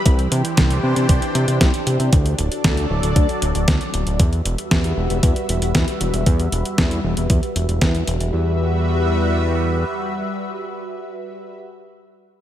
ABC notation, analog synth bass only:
X:1
M:4/4
L:1/16
Q:1/4=116
K:Em
V:1 name="Analog synth bass" clef=bass
C,,2 C, z C,,2 C, C, C,, z C, C, C,, z C, C, | D,,2 D,,, z D,,2 D,,, D,,, D,, z D,,, D,,, D,, z D,,, D,,, | E,,2 E,,, z E,,2 E,,, E,,, E,, z E,,, E,,, E,, z E,,, E,,, | E,,2 E,,, z E,,2 E,,, E,,, E,, z E,,, E,,, E,,2 E,,, E,,, |
E,,12 z4 | z16 |]